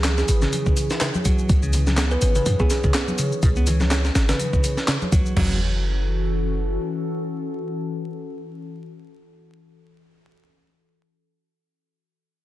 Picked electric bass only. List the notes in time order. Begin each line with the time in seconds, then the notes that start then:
0.42 C#3
1.01 C#3
1.25 F#3
1.63 C#3
1.98 B3
2.35 C#3
2.46 B2
2.60 B3
2.84 C#3
2.94 B3
3.19 C#3
3.43 B2
3.57 B3
3.67 E3
4.29 C#3
4.88 C#3
5.12 F#3
5.36 F#3